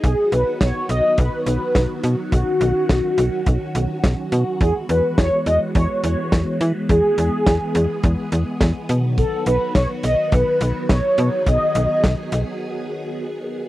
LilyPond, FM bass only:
\new Staff \with { instrumentName = "FM bass" } { \clef bass \time 4/4 \key b \mixolydian \tempo 4 = 105 b,,16 r16 b,,16 r16 b,,16 r16 b,,16 r16 b,,16 r16 b,,16 r16 b,,16 r16 b,16 r16 | b,,16 r16 b,,16 r16 b,,16 r16 b,,16 r16 b,,16 r16 b,,16 r16 b,,16 r16 b,16 r16 | e,16 r16 e,16 r16 e,16 r16 e,16 r16 e,16 r16 e,16 r16 e,16 r16 e16 r16 | e,16 r16 e,16 r16 e,16 r16 e,16 r16 e,16 r16 e,16 r16 e,16 r16 b,8~ |
b,16 r16 b,,16 r16 b,,16 r16 b,,16 r16 b,,16 r16 b,,16 r16 b,,16 r16 b,16 r16 | b,,16 r16 b,,16 r16 b,,16 r16 b,,16 r2 r16 | }